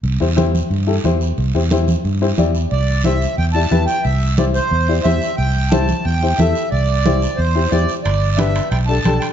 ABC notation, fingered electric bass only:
X:1
M:4/4
L:1/8
Q:1/4=180
K:C
V:1 name="Fingered electric bass" clef=bass
C,, E,,3 G,,2 E,,2 | C,, E,,3 G,,2 E,,2 | C,,4 E,,2 E,, z | C,,4 E,,2 E,, z |
C,,4 E,,2 E,, z | C,,4 E,,2 E,, z | G,,,4 B,,,2 B,,, z |]